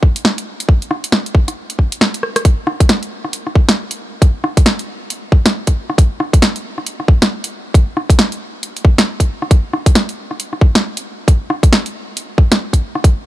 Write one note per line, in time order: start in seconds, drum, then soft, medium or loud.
0.03 kick loud
0.16 closed hi-hat medium
0.25 snare loud
0.38 closed hi-hat soft
0.60 closed hi-hat medium
0.69 kick loud
0.82 closed hi-hat soft
0.91 cross-stick medium
1.04 closed hi-hat medium
1.12 snare loud
1.26 closed hi-hat soft
1.35 kick loud
1.48 cross-stick soft
1.48 closed hi-hat medium
1.70 closed hi-hat soft
1.79 kick medium
1.92 closed hi-hat medium
2.01 snare loud
2.14 closed hi-hat soft
2.23 cross-stick medium
2.36 cross-stick medium
2.36 closed hi-hat medium
2.45 kick loud
2.45 closed hi-hat medium
2.67 cross-stick medium
2.80 kick loud
2.80 closed hi-hat medium
2.89 snare loud
2.89 closed hi-hat medium
3.03 closed hi-hat soft
3.25 cross-stick soft
3.33 closed hi-hat medium
3.47 cross-stick soft
3.55 kick loud
3.69 snare loud
3.69 closed hi-hat medium
3.91 closed hi-hat medium
4.22 kick loud
4.22 closed hi-hat medium
4.44 cross-stick medium
4.57 kick loud
4.57 closed hi-hat medium
4.66 snare loud
4.66 closed hi-hat medium
4.79 closed hi-hat soft
5.10 closed hi-hat medium
5.32 kick loud
5.46 snare loud
5.46 closed hi-hat medium
5.67 kick medium
5.67 closed hi-hat medium
5.90 cross-stick medium
5.98 kick loud
5.98 closed hi-hat medium
6.20 cross-stick medium
6.33 kick loud
6.33 closed hi-hat medium
6.42 snare loud
6.42 closed hi-hat medium
6.56 closed hi-hat soft
6.78 cross-stick soft
6.87 closed hi-hat medium
7.00 cross-stick soft
7.08 kick loud
7.22 snare loud
7.22 closed hi-hat medium
7.44 closed hi-hat medium
7.74 kick loud
7.74 closed hi-hat medium
7.97 cross-stick medium
8.10 kick loud
8.10 closed hi-hat medium
8.19 snare loud
8.19 closed hi-hat medium
8.32 closed hi-hat soft
8.63 closed hi-hat medium
8.77 closed hi-hat soft
8.85 kick loud
8.98 snare loud
8.98 closed hi-hat medium
9.20 kick medium
9.20 closed hi-hat medium
9.42 cross-stick soft
9.51 kick loud
9.51 closed hi-hat medium
9.73 cross-stick medium
9.86 kick loud
9.86 closed hi-hat medium
9.95 snare loud
9.95 closed hi-hat medium
10.09 closed hi-hat soft
10.31 cross-stick soft
10.40 closed hi-hat medium
10.53 cross-stick soft
10.61 kick loud
10.75 snare loud
10.75 closed hi-hat medium
10.97 closed hi-hat medium
11.28 kick loud
11.28 closed hi-hat medium
11.50 cross-stick medium
11.63 kick loud
11.63 closed hi-hat medium
11.73 snare loud
11.73 closed hi-hat medium
11.86 closed hi-hat soft
12.17 closed hi-hat medium
12.38 kick loud
12.52 snare loud
12.52 closed hi-hat medium
12.73 kick medium
12.73 closed hi-hat medium
12.95 cross-stick medium
13.04 kick loud
13.04 closed hi-hat medium